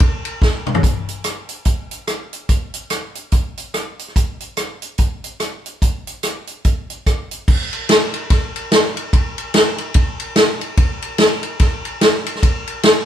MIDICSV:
0, 0, Header, 1, 2, 480
1, 0, Start_track
1, 0, Tempo, 415512
1, 954, Time_signature, 4, 2, 24, 8
1, 8639, Tempo, 411805
1, 15136, End_track
2, 0, Start_track
2, 0, Title_t, "Drums"
2, 1, Note_on_c, 9, 53, 73
2, 6, Note_on_c, 9, 36, 116
2, 116, Note_off_c, 9, 53, 0
2, 122, Note_off_c, 9, 36, 0
2, 289, Note_on_c, 9, 53, 63
2, 404, Note_off_c, 9, 53, 0
2, 481, Note_on_c, 9, 36, 98
2, 484, Note_on_c, 9, 38, 59
2, 597, Note_off_c, 9, 36, 0
2, 599, Note_off_c, 9, 38, 0
2, 769, Note_on_c, 9, 45, 92
2, 862, Note_on_c, 9, 43, 97
2, 884, Note_off_c, 9, 45, 0
2, 961, Note_on_c, 9, 36, 87
2, 967, Note_on_c, 9, 42, 78
2, 977, Note_off_c, 9, 43, 0
2, 1077, Note_off_c, 9, 36, 0
2, 1082, Note_off_c, 9, 42, 0
2, 1254, Note_on_c, 9, 42, 56
2, 1370, Note_off_c, 9, 42, 0
2, 1433, Note_on_c, 9, 42, 89
2, 1437, Note_on_c, 9, 37, 91
2, 1548, Note_off_c, 9, 42, 0
2, 1553, Note_off_c, 9, 37, 0
2, 1718, Note_on_c, 9, 42, 57
2, 1834, Note_off_c, 9, 42, 0
2, 1907, Note_on_c, 9, 42, 80
2, 1915, Note_on_c, 9, 36, 84
2, 2022, Note_off_c, 9, 42, 0
2, 2030, Note_off_c, 9, 36, 0
2, 2207, Note_on_c, 9, 42, 58
2, 2323, Note_off_c, 9, 42, 0
2, 2397, Note_on_c, 9, 37, 94
2, 2397, Note_on_c, 9, 42, 70
2, 2512, Note_off_c, 9, 37, 0
2, 2512, Note_off_c, 9, 42, 0
2, 2689, Note_on_c, 9, 42, 61
2, 2805, Note_off_c, 9, 42, 0
2, 2875, Note_on_c, 9, 42, 77
2, 2877, Note_on_c, 9, 36, 89
2, 2990, Note_off_c, 9, 42, 0
2, 2993, Note_off_c, 9, 36, 0
2, 3162, Note_on_c, 9, 42, 64
2, 3277, Note_off_c, 9, 42, 0
2, 3351, Note_on_c, 9, 42, 87
2, 3355, Note_on_c, 9, 37, 95
2, 3466, Note_off_c, 9, 42, 0
2, 3471, Note_off_c, 9, 37, 0
2, 3642, Note_on_c, 9, 42, 57
2, 3758, Note_off_c, 9, 42, 0
2, 3832, Note_on_c, 9, 42, 71
2, 3837, Note_on_c, 9, 37, 27
2, 3840, Note_on_c, 9, 36, 94
2, 3948, Note_off_c, 9, 42, 0
2, 3953, Note_off_c, 9, 37, 0
2, 3955, Note_off_c, 9, 36, 0
2, 4130, Note_on_c, 9, 42, 60
2, 4246, Note_off_c, 9, 42, 0
2, 4321, Note_on_c, 9, 37, 97
2, 4321, Note_on_c, 9, 42, 72
2, 4436, Note_off_c, 9, 37, 0
2, 4436, Note_off_c, 9, 42, 0
2, 4613, Note_on_c, 9, 42, 62
2, 4714, Note_on_c, 9, 37, 34
2, 4729, Note_off_c, 9, 42, 0
2, 4804, Note_on_c, 9, 36, 92
2, 4807, Note_on_c, 9, 42, 78
2, 4830, Note_off_c, 9, 37, 0
2, 4919, Note_off_c, 9, 36, 0
2, 4922, Note_off_c, 9, 42, 0
2, 5088, Note_on_c, 9, 42, 58
2, 5204, Note_off_c, 9, 42, 0
2, 5276, Note_on_c, 9, 42, 83
2, 5281, Note_on_c, 9, 37, 93
2, 5392, Note_off_c, 9, 42, 0
2, 5396, Note_off_c, 9, 37, 0
2, 5567, Note_on_c, 9, 42, 62
2, 5683, Note_off_c, 9, 42, 0
2, 5752, Note_on_c, 9, 42, 77
2, 5762, Note_on_c, 9, 36, 84
2, 5867, Note_off_c, 9, 42, 0
2, 5877, Note_off_c, 9, 36, 0
2, 6052, Note_on_c, 9, 42, 59
2, 6168, Note_off_c, 9, 42, 0
2, 6237, Note_on_c, 9, 37, 91
2, 6237, Note_on_c, 9, 42, 71
2, 6353, Note_off_c, 9, 37, 0
2, 6353, Note_off_c, 9, 42, 0
2, 6535, Note_on_c, 9, 42, 60
2, 6651, Note_off_c, 9, 42, 0
2, 6722, Note_on_c, 9, 36, 90
2, 6724, Note_on_c, 9, 42, 77
2, 6838, Note_off_c, 9, 36, 0
2, 6839, Note_off_c, 9, 42, 0
2, 7013, Note_on_c, 9, 42, 60
2, 7129, Note_off_c, 9, 42, 0
2, 7197, Note_on_c, 9, 42, 93
2, 7201, Note_on_c, 9, 37, 95
2, 7312, Note_off_c, 9, 42, 0
2, 7317, Note_off_c, 9, 37, 0
2, 7477, Note_on_c, 9, 42, 56
2, 7593, Note_off_c, 9, 42, 0
2, 7678, Note_on_c, 9, 42, 72
2, 7682, Note_on_c, 9, 36, 89
2, 7793, Note_off_c, 9, 42, 0
2, 7797, Note_off_c, 9, 36, 0
2, 7970, Note_on_c, 9, 42, 61
2, 8085, Note_off_c, 9, 42, 0
2, 8161, Note_on_c, 9, 36, 79
2, 8163, Note_on_c, 9, 37, 88
2, 8163, Note_on_c, 9, 42, 71
2, 8277, Note_off_c, 9, 36, 0
2, 8278, Note_off_c, 9, 37, 0
2, 8278, Note_off_c, 9, 42, 0
2, 8446, Note_on_c, 9, 42, 66
2, 8562, Note_off_c, 9, 42, 0
2, 8640, Note_on_c, 9, 36, 102
2, 8640, Note_on_c, 9, 49, 100
2, 8756, Note_off_c, 9, 36, 0
2, 8757, Note_off_c, 9, 49, 0
2, 8930, Note_on_c, 9, 53, 57
2, 9047, Note_off_c, 9, 53, 0
2, 9118, Note_on_c, 9, 53, 91
2, 9123, Note_on_c, 9, 38, 116
2, 9235, Note_off_c, 9, 53, 0
2, 9239, Note_off_c, 9, 38, 0
2, 9406, Note_on_c, 9, 53, 60
2, 9523, Note_off_c, 9, 53, 0
2, 9599, Note_on_c, 9, 53, 72
2, 9601, Note_on_c, 9, 36, 102
2, 9604, Note_on_c, 9, 38, 34
2, 9715, Note_off_c, 9, 53, 0
2, 9718, Note_off_c, 9, 36, 0
2, 9720, Note_off_c, 9, 38, 0
2, 9897, Note_on_c, 9, 53, 63
2, 10013, Note_off_c, 9, 53, 0
2, 10082, Note_on_c, 9, 38, 112
2, 10082, Note_on_c, 9, 53, 70
2, 10199, Note_off_c, 9, 38, 0
2, 10199, Note_off_c, 9, 53, 0
2, 10376, Note_on_c, 9, 53, 62
2, 10492, Note_off_c, 9, 53, 0
2, 10565, Note_on_c, 9, 36, 107
2, 10568, Note_on_c, 9, 53, 71
2, 10682, Note_off_c, 9, 36, 0
2, 10685, Note_off_c, 9, 53, 0
2, 10855, Note_on_c, 9, 53, 63
2, 10971, Note_off_c, 9, 53, 0
2, 11041, Note_on_c, 9, 53, 91
2, 11045, Note_on_c, 9, 38, 111
2, 11157, Note_off_c, 9, 53, 0
2, 11162, Note_off_c, 9, 38, 0
2, 11326, Note_on_c, 9, 53, 59
2, 11442, Note_off_c, 9, 53, 0
2, 11510, Note_on_c, 9, 53, 78
2, 11521, Note_on_c, 9, 36, 112
2, 11627, Note_off_c, 9, 53, 0
2, 11637, Note_off_c, 9, 36, 0
2, 11807, Note_on_c, 9, 53, 63
2, 11924, Note_off_c, 9, 53, 0
2, 11995, Note_on_c, 9, 38, 113
2, 11995, Note_on_c, 9, 53, 78
2, 12112, Note_off_c, 9, 38, 0
2, 12112, Note_off_c, 9, 53, 0
2, 12291, Note_on_c, 9, 53, 58
2, 12408, Note_off_c, 9, 53, 0
2, 12480, Note_on_c, 9, 53, 77
2, 12482, Note_on_c, 9, 36, 115
2, 12597, Note_off_c, 9, 53, 0
2, 12598, Note_off_c, 9, 36, 0
2, 12772, Note_on_c, 9, 53, 60
2, 12888, Note_off_c, 9, 53, 0
2, 12956, Note_on_c, 9, 53, 86
2, 12960, Note_on_c, 9, 38, 124
2, 13072, Note_off_c, 9, 53, 0
2, 13077, Note_off_c, 9, 38, 0
2, 13243, Note_on_c, 9, 53, 59
2, 13359, Note_off_c, 9, 53, 0
2, 13438, Note_on_c, 9, 53, 77
2, 13443, Note_on_c, 9, 36, 109
2, 13443, Note_on_c, 9, 38, 32
2, 13554, Note_off_c, 9, 53, 0
2, 13559, Note_off_c, 9, 36, 0
2, 13559, Note_off_c, 9, 38, 0
2, 13734, Note_on_c, 9, 53, 58
2, 13851, Note_off_c, 9, 53, 0
2, 13924, Note_on_c, 9, 38, 115
2, 13924, Note_on_c, 9, 53, 72
2, 14041, Note_off_c, 9, 38, 0
2, 14041, Note_off_c, 9, 53, 0
2, 14218, Note_on_c, 9, 53, 65
2, 14320, Note_on_c, 9, 38, 39
2, 14334, Note_off_c, 9, 53, 0
2, 14408, Note_on_c, 9, 36, 104
2, 14410, Note_on_c, 9, 53, 79
2, 14437, Note_off_c, 9, 38, 0
2, 14524, Note_off_c, 9, 36, 0
2, 14527, Note_off_c, 9, 53, 0
2, 14696, Note_on_c, 9, 53, 64
2, 14812, Note_off_c, 9, 53, 0
2, 14881, Note_on_c, 9, 53, 85
2, 14886, Note_on_c, 9, 38, 115
2, 14998, Note_off_c, 9, 53, 0
2, 15002, Note_off_c, 9, 38, 0
2, 15136, End_track
0, 0, End_of_file